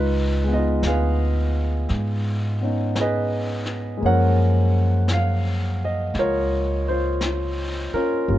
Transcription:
Already playing: C#2 D#4 F4 B4
0.44 G#3 B3
0.52 D#4 F4 D#5
0.82 D2, brush sweep, snare, hi-hat pedal
0.86 G#4 B4 F5
1.89 G#2, brush sweep, snare
2.61 B3 C#4 D#4
2.96 brush sweep, snare, hi-hat pedal
3.00 G#4 B4 D#5
3.66 snare
3.97 G#3 A#3, brush sweep
4.03 F#2 C#4 A#4 C#5 F#5
4.08 F3
5.08 brush sweep, snare, hi-hat pedal
5.13 F5
5.85 D#5
6.14 C#2, brush sweep, snare
6.19 F4 A#4 C#5
6.88 F4 C5
7.21 brush sweep, snare, hi-hat pedal
7.93 C#4 F4 A#4, muted upright bass stroke
8.28 G1 G3 A#3 C#4 F4, brush sweep

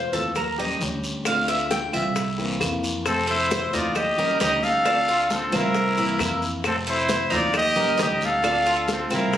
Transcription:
Already playing: C3 A3 C4 F4 C5
0.12 D#2 E3 A3 C4 F4 A4, high bongo, high conga, short guiro, maracas
0.35 A#4, muted nylon-string guitar stroke, high bongo, high conga, low conga, long guiro, claves, maracas
0.58 G3 C#4 G4 D#5, high bongo, high conga, low conga, maracas
0.81 D2 G3 C#4 G4, high bongo, low bongo, high conga, short guiro, maracas
1.04 short guiro, maracas
1.25 D3 A3 C4 F4 F5, high bongo, high conga, long guiro, claves, maracas
1.48 E5, high bongo, high conga, maracas
1.71 G5, high bongo, high conga, short guiro, maracas
1.93 C2 A3 C4 F4 E5, high bongo, high conga, short guiro, claves, maracas
2.16 muted nylon-string guitar stroke, high bongo, high conga, long guiro, maracas
2.38 E3 A#3 C4 E4, high bongo, high conga, maracas
2.60 F2 E3 A#3 C4 E4, high bongo, high conga, short guiro, claves, maracas
2.83 low bongo, short guiro, maracas
3.05 C3 A3 C4 A4, high bongo, high conga, long guiro, claves, maracas
3.27 E4 A4 C5, high conga
3.51 C5, high bongo, high conga, short guiro, maracas
3.72 D#2 E3 A3 C4 D#4 F4 D5, short guiro, maracas
3.95 G4 D#5, muted nylon-string guitar stroke, high bongo, high conga, low conga, long guiro, claves, maracas
4.18 G3 C#4 G4 A#4, high conga, low conga
4.40 D2 G3 C#4 D#4 G4 D#5, high bongo, low bongo, high conga, short guiro, maracas
4.62 A4 F5, high conga, short guiro, maracas
4.85 D3 A3 C4 D4 F4, high bongo, high conga, long guiro, claves, maracas
5.08 F4, high bongo, high conga
5.30 C4 A4, high bongo, high conga, short guiro, maracas
5.51 C2 A3 C4 F4, high bongo, high conga, short guiro, claves, maracas
5.55 E4 A#4
5.75 muted nylon-string guitar stroke, high bongo, high conga, long guiro, maracas
5.97 E3 A#3 C4 E4, high bongo, high conga, maracas
6.19 F2 E3 A#3 C4 E4, high bongo, low bongo, high conga, short guiro, claves, maracas
6.42 high conga, short guiro, maracas
6.64 C3 A3 C4 A4, high bongo, high conga, long guiro, claves, maracas
6.87 E4 A4 C5, high conga, maracas
7.09 C5, high bongo, high conga, short guiro, maracas
7.30 D#2 E3 A3 C4 D#4 F4, high conga, short guiro, maracas
7.34 F4 D5
7.54 G4 D#5, muted nylon-string guitar stroke, high bongo, high conga, low conga, long guiro, claves, maracas
7.76 G3 C#4 G4 A#4, high conga, low conga
7.98 D2 G3 C#4 D#4 G4, high bongo, low bongo, high conga, short guiro, maracas
8.02 G4 D#5
8.21 high conga, short guiro, maracas
8.25 A4 F5
8.42 D3 A3 C4 D4 F4, high bongo, high conga, long guiro, claves, maracas
8.66 F4, high bongo, high conga
8.88 C4, high bongo, high conga, short guiro, maracas
8.93 A4
9.10 C2 A3 C4 F4, high bongo, high conga, short guiro, claves, maracas
9.14 E4 A#4
9.33 muted nylon-string guitar stroke, high bongo, high conga, long guiro, maracas

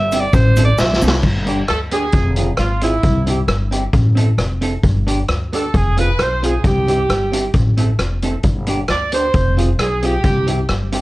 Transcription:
Already playing: G1 E5
0.12 C4 E4 G4, closed hi-hat, cabasa
0.20 D5
0.33 A1 C5, kick, closed hi-hat, cabasa
0.56 C4 E4 A4, closed hi-hat, cabasa
0.65 D5
0.78 B1 E5, snare, cabasa
0.93 snare
1.01 C2 C4 E4 A4, cabasa
1.08 snare
1.23 G1, kick, crash
1.46 B3 D4 G4, closed hi-hat
1.68 D2 A4, cross-stick, closed hi-hat
1.91 B3 D4 G4 G#4, closed hi-hat
2.12 F1, kick, closed hi-hat
2.36 C4 F4 G#4, closed hi-hat
2.57 G#1 F4, cross-stick, closed hi-hat
2.81 C4 E4 F4 G#4, closed hi-hat
3.03 C2, kick, closed hi-hat
3.27 C4 E4 G4, closed hi-hat
3.48 G1, cross-stick, closed hi-hat
3.71 C4 E4 G4, closed hi-hat
3.93 A1, kick, closed hi-hat
4.15 C4 E4 A4, closed hi-hat
4.38 F1, cross-stick, closed hi-hat
4.61 C4 E4 A4, closed hi-hat
4.83 G1, kick, closed hi-hat
5.07 B3 D4 G4, closed hi-hat
5.28 D2, cross-stick, closed hi-hat
5.53 B3 D4 G4 A4, closed hi-hat
5.74 F1 G#4, kick, closed hi-hat
5.97 C4 F4 G#4 B4, closed hi-hat
6.19 B1 C5, cross-stick, closed hi-hat
6.43 C4 F4 G#4, closed hi-hat
6.64 C2 G4, kick, closed hi-hat
6.88 C4 E4 G4, closed hi-hat
7.09 G1, cross-stick, closed hi-hat
7.32 C4 E4 G4, closed hi-hat
7.54 A1, kick, closed hi-hat
7.77 C4 E4 A4, closed hi-hat
7.99 F1, cross-stick, closed hi-hat
8.22 C4 E4 A4, closed hi-hat
8.43 G1, kick, closed hi-hat
8.67 B3 D4 G4, closed hi-hat
8.88 D2 D5, cross-stick, closed hi-hat
9.12 B3 D4 G4 C5, closed hi-hat
9.34 F1, kick, closed hi-hat
9.57 C4 F4 G#4, closed hi-hat
9.79 B1 G#4, cross-stick, closed hi-hat
10.02 C4 F4 G4 G#4, closed hi-hat
10.24 C2, kick, closed hi-hat
10.47 C4 E4 G4, closed hi-hat
10.69 G1, cross-stick, closed hi-hat
10.92 C4 E4 G4, closed hi-hat

